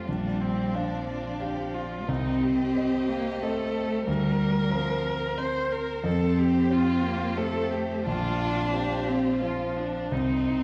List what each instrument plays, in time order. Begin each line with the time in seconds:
Already playing: string section C4, grand piano C5
0.07 grand piano A#1, cello G3, viola D4, string section F4 D5
0.40 viola C4
0.74 cello F3, viola D4, grand piano D4 C5 F5
1.07 viola D4
1.40 cello F3, grand piano D4 C5 F5, viola G4
1.74 viola F4
2.07 grand piano C2, cello C4, viola D#4, string section G4 D#5
2.43 viola G4
2.76 grand piano C4 C5 D#5
3.09 cello A#3
3.41 cello A3, grand piano C4 C5 D#5, viola A4
4.06 grand piano D2, cello G3, string section C4 A#4 C5, viola A#4
4.71 cello F3, grand piano C4 A#4 C5
5.38 grand piano C4 A#4 C5, viola C5
5.72 viola A#4
6.04 grand piano F2, cello C4, string section G4, viola A4
6.38 viola G4
6.70 grand piano C4 G4 C5, viola F4
7.02 cello A#3
7.36 cello A3, grand piano C4 G4 C5, viola A4
7.71 viola G4
8.05 grand piano A#1, cello D4, viola F4, string section F4
8.73 grand piano C4 F4 C5, viola G4
9.08 cello C4
9.41 cello F3, grand piano C4 F4 C5, viola F4
9.77 viola D4
10.11 grand piano C2, cello C4, string section C4 D#4 C5, viola D#4